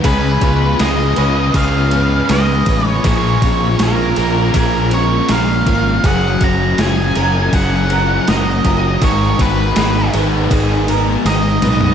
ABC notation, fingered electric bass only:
X:1
M:4/4
L:1/8
Q:1/4=80
K:Dbmix
V:1 name="Fingered electric bass" clef=bass
D,, D,, D,, D,, D,,2 D,, =A,,, | B,,, B,,, B,,, B,,, B,,,2 B,,, A,,, | G,,, G,,, G,,, G,,, G,,,2 G,,, G,,, | A,,, A,,, A,,, A,,, A,,,2 A,,, C,, |]